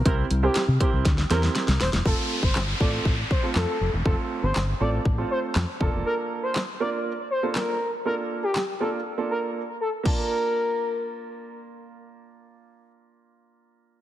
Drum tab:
CC |----------------|----------------|----------------|----------------|
HH |x-x-x-x-x-x-x-o-|----------------|----------------|----------------|
CP |----x-----------|----x-------x---|----x-------x---|----x-------x---|
SD |----o---oooooooo|----o-------o---|----o-------o---|----o-------o---|
BD |o-----o-o-------|o--o--o-o-o-----|o-------o-----o-|----------------|

CC |----------------|x---------------|----------------|
HH |----------------|----------------|----------------|
CP |----x-----------|----------------|----------------|
SD |----o-----------|----------------|----------------|
BD |----------------|o---------------|----------------|